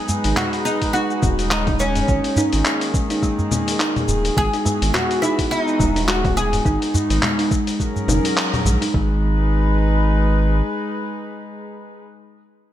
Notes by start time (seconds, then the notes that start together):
Already playing: G#3 D#4 G#4 B4
0.08 G#3, udu, cabasa
0.24 G#1 D#4, open hi-hat, cabasa
0.37 G#3 F#4, clap, low conga, cabasa
0.53 open hi-hat, cabasa
0.65 D#4, cabasa
0.82 kick, open hi-hat, cabasa
0.93 D#4 F#4, cabasa
1.10 cabasa
1.22 D#1, kick, low conga, cabasa
1.39 open hi-hat, cabasa
1.51 G#3 D#4, clap, cabasa
1.67 D#4, kick, open hi-hat, low conga, cabasa
1.79 G#3 C#4, cabasa
1.96 open hi-hat, udu, cabasa
2.08 G#1 D#3 A#3 G#4, kick, cabasa
2.24 open hi-hat, cabasa
2.36 D#4, udu, cabasa
2.53 G#1, open hi-hat, cabasa
2.65 clap, cabasa
2.81 open hi-hat, cabasa
2.94 G#3, kick, cabasa
3.10 D#4, open hi-hat, cabasa
3.23 G#3, kick, cabasa
3.39 udu, cabasa
3.51 low conga, cabasa
3.68 open hi-hat, cabasa
3.79 D#4, clap, cabasa
3.96 open hi-hat, low conga, cabasa
4.08 D#1, udu, cabasa
4.25 open hi-hat, cabasa
4.37 G#1 E3 G#3 B3 F#4 G#4, kick, cabasa
4.53 D#4, open hi-hat, cabasa
4.65 G#3, udu, cabasa
4.82 G#1, open hi-hat, cabasa
4.94 F#4, clap, low conga, cabasa
5.11 open hi-hat, cabasa
5.22 D#4 E4, cabasa
5.39 kick, open hi-hat, cabasa
5.51 D#4, cabasa
5.68 cabasa
5.79 D#1 G#3, kick, low conga, cabasa
5.96 D#4, open hi-hat, cabasa
6.08 G#3 F#4, clap, cabasa
6.24 kick, open hi-hat, low conga, cabasa
6.37 G#4, cabasa
6.53 open hi-hat, udu, cabasa
6.65 G#1 G#3 B3 D#4, kick, cabasa
6.82 open hi-hat, cabasa
6.94 udu, cabasa
7.10 G#1, open hi-hat, cabasa
7.23 G#3, clap, low conga, cabasa
7.39 D#4, open hi-hat, cabasa
7.51 G#3, kick, cabasa
7.67 open hi-hat, cabasa
7.79 F#3 C#4 G#4 A#4, kick, cabasa
7.96 udu, cabasa
8.08 F#1 D#4, low conga, cabasa
8.25 open hi-hat, cabasa
8.37 clap, cabasa
8.54 open hi-hat, low conga, cabasa
8.65 A#1 G#3, udu, cabasa
8.81 D#4, open hi-hat, cabasa
8.94 G#1 G#3 D#4 G#4 B4, kick